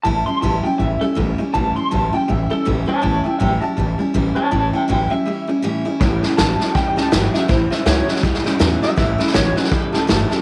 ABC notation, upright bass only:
X:1
M:4/4
L:1/8
Q:"Swing" 1/4=161
K:Amix
V:1 name="Upright bass" clef=bass
A,,, z A,,, z A,,, z A,,, z | A,,, z A,,, z A,,, z A,,, z | A,,, z A,,, z A,,, z A,,, z | A,,, z A,,, z4 z |
A,,, z A,,, z2 C,, G,,, z | A,,, z C,, z C,, C,, E,, z | A,,, z A,,, z2 C,, G,,, z |]